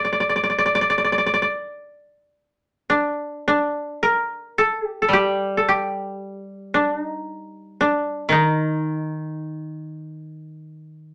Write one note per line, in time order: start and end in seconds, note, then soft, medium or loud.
0.05 0.12 D5 soft
0.13 0.20 D5 soft
0.20 0.29 D5 soft
0.29 0.35 D5 soft
0.36 0.43 D5 soft
0.44 0.49 D5 soft
0.50 0.58 D5 soft
0.59 0.65 D5 medium
0.66 0.75 D5 soft
0.75 0.81 D5 medium
0.81 0.89 D5 soft
0.90 0.97 D5 medium
0.98 1.04 D5 soft
1.04 1.12 D5 soft
1.12 1.18 D5 soft
1.18 1.26 D5 soft
1.26 1.33 D5 soft
1.34 1.42 D5 medium
1.42 3.02 D5 soft
2.90 3.47 D4 medium
3.48 5.90 D4 medium
4.03 4.64 A#4 medium
4.58 4.86 A4 medium
4.86 5.02 G4 medium
5.02 5.57 A4 soft
5.09 8.29 G3 soft
5.13 5.68 G4 medium
5.57 7.48 A4 soft
5.68 7.72 G4 medium
6.74 6.98 D4 medium
6.98 7.87 D#4 medium
7.81 8.38 D4 medium
8.29 11.14 D#3 soft
8.29 10.89 D#4 medium